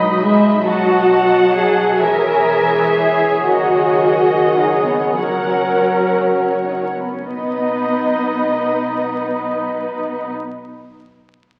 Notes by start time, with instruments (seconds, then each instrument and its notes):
Already playing: double bass section B1, viola section F#3 D#4, violin section D#5 B5
0.21 viola section G#3, violin section E5
0.63 viola section F#3 F#4, cello section F#4, violin section D#5 F#5 A5
1.51 cello section G#4
1.98 double bass section E1, viola section E3 G#4, cello section A#4, violin section C#5 E5 G#5
2.94 cello section G#4
3.44 double bass section F#1, viola section D#3, cello section F#4, violin section D#5 F#5
4.56 cello section D#4
4.85 cello section B3
5.15 viola section F#3 A#4, cello section C#4, violin section C#5 F#5
6.65 cello section D#4
6.81 cello section C#4
6.96 cello section B3
7.12 cello section C#4
7.26 double bass section B1, cello section B3, viola section D#4, violin section B4 D#5